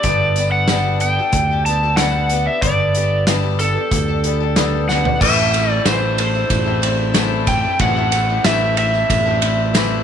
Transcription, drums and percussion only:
0.03 kick, closed hi-hat
0.36 closed hi-hat, tambourine
0.68 snare, closed hi-hat, tambourine
1.00 closed hi-hat, tambourine
1.33 kick, closed hi-hat, tambourine
1.66 closed hi-hat
1.97 snare, closed hi-hat, tambourine
2.29 closed hi-hat, tambourine
2.62 kick, closed hi-hat, tambourine
2.95 closed hi-hat, tambourine
3.27 snare, closed hi-hat, tambourine
3.59 closed hi-hat, tambourine
3.91 kick, closed hi-hat, tambourine
4.24 closed hi-hat, tambourine
4.56 snare, closed hi-hat, tambourine
4.89 snare, tambourine
5.05 floor tom
5.21 kick, crash
5.53 ride, tambourine
5.86 snare, ride, tambourine
6.18 ride, tambourine
6.35 tambourine
6.50 kick, ride, tambourine
6.83 ride
7.15 snare, ride, tambourine
7.47 kick, ride, tambourine
7.79 kick, ride
8.12 ride, tambourine
8.44 snare, ride, tambourine
8.77 ride, tambourine
8.94 tambourine
9.10 kick, ride, tambourine
9.42 ride
9.75 snare, ride, tambourine

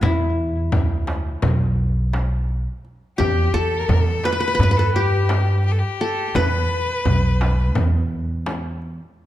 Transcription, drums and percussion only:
0.02 darbuka dum, frame drum
0.20 darbuka ka
0.72 frame drum, darbuka dum
1.07 darbuka tek, frame drum
1.42 frame drum, darbuka dum
1.78 darbuka ka
2.13 darbuka tek, frame drum
2.49 darbuka ka
2.85 darbuka ka
3.19 frame drum, darbuka dum
3.89 frame drum, darbuka dum
4.24 darbuka tek, frame drum
4.59 darbuka dum, frame drum
4.95 darbuka ka
5.29 darbuka tek, frame drum
5.65 darbuka ka
6.00 darbuka ka
6.35 frame drum, darbuka dum
6.70 darbuka ka
7.05 frame drum, darbuka dum
7.41 darbuka tek, frame drum
7.75 frame drum, darbuka dum
8.11 darbuka ka
8.46 darbuka tek, frame drum
8.82 darbuka ka

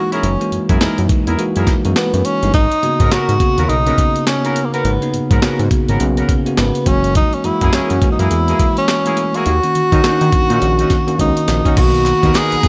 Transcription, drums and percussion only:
0.12 closed hi-hat
0.23 closed hi-hat
0.41 closed hi-hat
0.52 closed hi-hat
0.69 kick, closed hi-hat
0.81 snare, clap, closed hi-hat
0.98 closed hi-hat
1.09 kick, closed hi-hat
1.27 closed hi-hat
1.39 closed hi-hat
1.56 closed hi-hat
1.67 kick, snare, closed hi-hat
1.85 closed hi-hat
1.96 snare, clap, closed hi-hat
2.14 closed hi-hat
2.25 closed hi-hat
2.43 closed hi-hat
2.54 kick, closed hi-hat
2.72 closed hi-hat
2.83 closed hi-hat
3.00 kick, closed hi-hat
3.11 snare, clap, closed hi-hat
3.29 closed hi-hat
3.40 kick, closed hi-hat
3.58 closed hi-hat
3.69 closed hi-hat
3.87 closed hi-hat
3.98 kick, closed hi-hat
4.16 closed hi-hat
4.27 snare, clap, closed hi-hat
4.45 closed hi-hat
4.56 closed hi-hat
4.74 closed hi-hat
4.85 closed hi-hat
5.02 closed hi-hat
5.14 closed hi-hat
5.31 kick, closed hi-hat
5.42 snare, clap, closed hi-hat
5.59 closed hi-hat
5.71 kick, closed hi-hat
5.88 closed hi-hat
6.00 closed hi-hat
6.17 closed hi-hat
6.29 kick, closed hi-hat
6.46 closed hi-hat
6.57 snare, clap, closed hi-hat
6.75 closed hi-hat
6.86 kick, closed hi-hat
7.04 closed hi-hat
7.15 kick, closed hi-hat
7.33 closed hi-hat
7.44 closed hi-hat
7.61 kick, closed hi-hat
7.73 snare, clap, closed hi-hat
7.90 closed hi-hat
8.02 kick, closed hi-hat
8.19 closed hi-hat
8.31 closed hi-hat
8.48 closed hi-hat
8.59 kick, closed hi-hat
8.77 closed hi-hat
8.88 snare, clap, closed hi-hat
9.06 closed hi-hat
9.17 closed hi-hat
9.34 closed hi-hat
9.46 closed hi-hat
9.63 closed hi-hat
9.75 closed hi-hat
9.92 kick, closed hi-hat
10.04 snare, clap, closed hi-hat
10.21 closed hi-hat
10.32 kick, closed hi-hat
10.50 closed hi-hat
10.62 closed hi-hat
10.79 closed hi-hat
10.90 kick, snare, closed hi-hat
11.08 closed hi-hat
11.19 kick, closed hi-hat
11.37 closed hi-hat
11.48 snare, closed hi-hat
11.65 kick, closed hi-hat
11.77 kick, closed hi-hat, crash
11.94 closed hi-hat
12.06 clap, closed hi-hat
12.23 kick, closed hi-hat
12.35 snare, clap, closed hi-hat
12.52 closed hi-hat
12.63 kick, closed hi-hat

